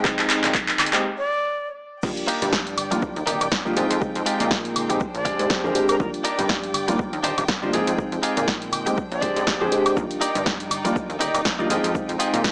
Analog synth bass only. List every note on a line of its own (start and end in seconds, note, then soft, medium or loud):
0.19 0.26 F2 medium
0.44 0.95 A#2 medium
0.93 1.04 A#1 loud
2.03 2.13 D#2 loud
2.42 2.93 G2 medium
2.91 3.02 D#2 medium
3.16 3.24 D#2 medium
3.27 3.37 D#1 medium
3.41 3.49 D#1 loud
3.77 3.86 F2 medium
3.91 4.01 F2 medium
4.02 4.13 F2 soft
4.16 4.23 F2 medium
4.40 4.91 A#2 medium
4.90 5.06 A#1 loud
5.15 5.31 A#1 medium
5.40 5.47 G#2 loud
5.64 5.72 F2 medium
6.00 6.10 D#2 loud
6.39 6.90 G2 medium
6.88 6.99 D#2 medium
7.13 7.21 D#2 medium
7.24 7.33 D#1 medium
7.38 7.45 D#1 loud
7.74 7.83 F2 medium
7.87 7.98 F2 medium
7.98 8.10 F2 soft
8.12 8.20 F2 medium
8.37 8.88 A#2 medium
8.87 9.03 A#1 medium
9.12 9.27 A#1 medium
9.36 9.44 G#2 loud
9.61 9.69 F2 medium
9.97 10.06 D#2 loud
10.35 10.86 G2 medium
10.85 10.95 D#2 loud
10.96 11.07 D#2 soft
11.10 11.17 D#2 medium
11.20 11.30 D#1 medium
11.35 11.42 D#1 loud
11.70 11.80 F2 medium
11.84 11.94 F2 medium
11.95 12.06 F2 soft
12.09 12.16 F2 medium
12.33 12.52 A#2 medium